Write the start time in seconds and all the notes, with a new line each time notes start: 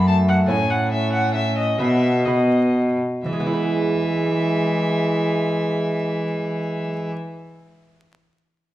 Already playing: F#2 A3 C#4 F#4
0.08 A3 A5
0.28 F#5
0.46 A3 C#4 E4 G#5
0.50 A2 C#4
0.71 F#5
0.91 C#4 E5
1.13 F#5
1.34 C#4 E5
1.58 D#5
1.79 B2 B3 B4 E5
2.25 B3 B4 D#5
3.24 E3 G#3 E5
3.33 G#3
3.40 B3
3.47 E4
3.53 B4